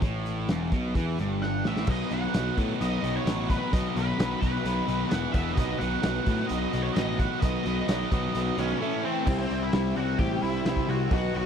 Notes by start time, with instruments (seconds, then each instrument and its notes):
0.02 picked electric bass A1, distorted electric guitar A2, kick, closed hi-hat
0.26 closed hi-hat
0.48 picked electric bass E1, distorted electric guitar E2, snare, closed hi-hat
0.72 picked electric bass B1, distorted electric guitar B2, kick, closed hi-hat
0.95 picked electric bass E2, distorted electric guitar E3, kick, closed hi-hat
1.19 picked electric bass G1, distorted electric guitar G2, closed hi-hat
1.42 lead electric guitar F#5, snare
1.65 picked electric bass A1, distorted electric guitar A2, lead electric guitar E5, snare
1.77 snare
1.87 picked electric bass B1, distorted electric guitar B2 D#3 F#3 B3, lead electric guitar D#5, kick, crash
1.91 distorted electric guitar D#4 B4
2.11 picked electric bass B1, distorted electric guitar B2 D#3 F#3 B3 D#4 B4, lead electric guitar F#5, closed hi-hat
2.34 picked electric bass B1, distorted electric guitar B2 D#3 F#3 B3 D#4 B4, snare, closed hi-hat
2.57 picked electric bass A2, distorted electric guitar B2 D#3 F#3 B3 D#4 B4, kick, closed hi-hat
2.80 picked electric bass B1, distorted electric guitar B2 D#3 F#3 B3 D#4 B4, lead electric guitar D#5, closed hi-hat
3.03 picked electric bass B1, distorted electric guitar B2 D#3 F#3 B3 D#4 B4, closed hi-hat
3.16 lead electric guitar C#5
3.26 picked electric bass A1, distorted electric guitar B2 D#3 F#3 B3 D#4 B4, snare, closed hi-hat
3.49 distorted electric guitar B2 D#3 F#3 B3 D#4 B4, lead electric guitar B4, kick, closed hi-hat
3.71 picked electric bass B1, distorted electric guitar B2 D#3 F#3 B3 D#4 B4, lead electric guitar D#5, kick, closed hi-hat
3.96 picked electric bass B1, distorted electric guitar B2 D#3 F#3 B3 D#4 B4, lead electric guitar B4, closed hi-hat
4.18 picked electric bass B1, distorted electric guitar B2 D#3 F#3 B3 D#4 B4, snare, closed hi-hat
4.41 picked electric bass B1, distorted electric guitar B2 D#3 F#3 B3 D#4 B4, lead electric guitar B4, kick, closed hi-hat
4.64 picked electric bass B1, distorted electric guitar B2 D#3 F#3 B3 D#4 B4, closed hi-hat
4.88 picked electric bass B1, distorted electric guitar B2 D#3 F#3 B3 D#4 B4, closed hi-hat
5.09 picked electric bass E1, overdriven electric guitar E2 B2, distorted electric guitar E3 B3 E4, lead electric guitar F#5, snare, closed hi-hat
5.13 distorted electric guitar B4
5.32 picked electric bass E1, overdriven electric guitar E2 B2, distorted electric guitar E3 B3 E4, lead electric guitar E5, kick, closed hi-hat
5.36 distorted electric guitar B4
5.54 picked electric bass B1, distorted electric guitar B2 D#3, upright piano F#4, lead electric guitar D#5, kick, closed hi-hat
5.58 distorted electric guitar F#3 B3 D#4 B4, upright piano B4 D#5
5.78 picked electric bass B1, distorted electric guitar B2 D#3 F#3, lead electric guitar F#5, closed hi-hat
5.82 distorted electric guitar B3 D#4 B4
6.03 picked electric bass B1, distorted electric guitar B2 D#3 F#3 B3 D#4 B4, upright piano F#4 B4 D#5, snare, closed hi-hat
6.26 picked electric bass A2, distorted electric guitar B2 D#3 F#3 B3 D#4 B4, kick, snare, closed hi-hat
6.47 distorted electric guitar B2 D#3, upright piano B4, lead electric guitar D#5, closed hi-hat
6.51 picked electric bass B1, distorted electric guitar F#3 B3 D#4 B4, upright piano F#4 D#5
6.73 picked electric bass B1, distorted electric guitar B2 D#3 F#3 B3 D#4 B4, closed hi-hat
6.83 lead electric guitar C#5
6.94 picked electric bass A1, distorted electric guitar B2 D#3 F#3 B3, upright piano F#4 B4 D#5, lead electric guitar D#5, snare, closed hi-hat
6.98 distorted electric guitar D#4 B4
7.19 distorted electric guitar B2 D#3 F#3 B3 D#4 B4, lead electric guitar F#5, kick, closed hi-hat
7.39 picked electric bass B1, distorted electric guitar B2 D#3 F#3 B3, upright piano F#4 B4 D#5, lead electric guitar D#5, kick, closed hi-hat
7.44 distorted electric guitar D#4 B4
7.64 picked electric bass B1, distorted electric guitar B2 D#3 F#3 B3 D#4, lead electric guitar D#5, closed hi-hat
7.68 distorted electric guitar B4
7.88 picked electric bass B1, distorted electric guitar B2 D#3 F#3 B3 D#4 B4, upright piano F#4 B4 C#5, snare, closed hi-hat
8.11 picked electric bass B1, distorted electric guitar B2 D#3 F#3 B3 D#4 B4, kick, snare, closed hi-hat
8.34 picked electric bass B1, distorted electric guitar B2 D#3 F#3 B3 D#4 B4, upright piano F#4 B4 D#5, closed hi-hat
8.58 picked electric bass B1, distorted electric guitar B2 D#3 F#3 B3 D#4 B4, lead electric guitar C#4, closed hi-hat
8.80 distorted electric guitar A2 E3 A3 E4 A4, upright piano E4 A4 E5
9.04 distorted electric guitar A2 E3 A3 E4 A4, lead electric guitar C4
9.26 picked electric bass C2, overdriven electric guitar C3 G3 C4 E4, tonewheel organ G3 E4 C5, upright piano E4 G4 C5, kick, crash
9.39 lead electric guitar C4
9.49 picked electric bass C2, overdriven electric guitar C3 G3 C4 E4, open hi-hat
9.62 lead electric guitar E4
9.72 picked electric bass C2, overdriven electric guitar C3 G3 C4 E4, upright piano E4 G4 C5, snare, open hi-hat
9.95 picked electric bass C2, overdriven electric guitar C3 G3 C4 E4, lead electric guitar F#4, open hi-hat
10.18 picked electric bass A1, overdriven electric guitar C3 G3 C4 E4, upright piano E4 G4 C5, lead electric guitar G4, kick, open hi-hat
10.42 picked electric bass C2, overdriven electric guitar C3 G3 C4 E4, lead electric guitar E4, upright piano E4 G4 C5, snare, open hi-hat
10.64 picked electric bass C2, overdriven electric guitar C3 G3 C4 E4, upright piano E4 G4 C5, snare, open hi-hat
10.77 kick
10.88 picked electric bass C2, overdriven electric guitar C3 G3 C4 E4, lead electric guitar F#4, open hi-hat
11.10 picked electric bass B1, overdriven electric guitar B2 D#3 F#3 B3 D#4, tonewheel organ F#3 D#4 B4, upright piano D#4 F#4 B4, lead electric guitar F#4, kick, open hi-hat
11.34 picked electric bass B1, overdriven electric guitar B2 D#3 F#3 B3 D#4, lead electric guitar F#4, open hi-hat